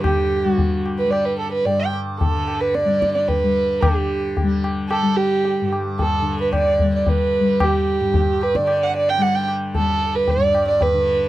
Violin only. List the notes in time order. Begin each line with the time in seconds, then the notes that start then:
0.04 G4
0.48 F#4
0.98 B4
1.11 D5
1.25 B4
1.39 A4
1.52 B4
1.65 D5
1.80 G5
2.20 A4
2.60 B4
2.74 D5
3.15 D5
3.28 B4
3.81 G4
4.90 A4
5.17 G4
6.00 A4
6.41 B4
6.54 D5
6.96 D5
7.09 B4
7.63 G4
8.43 B4
8.56 D5
8.83 F#5
8.96 D5
9.10 G5
9.22 F#5
9.35 G5
9.76 A4
10.16 B4
10.29 D5
10.68 D5
10.82 B4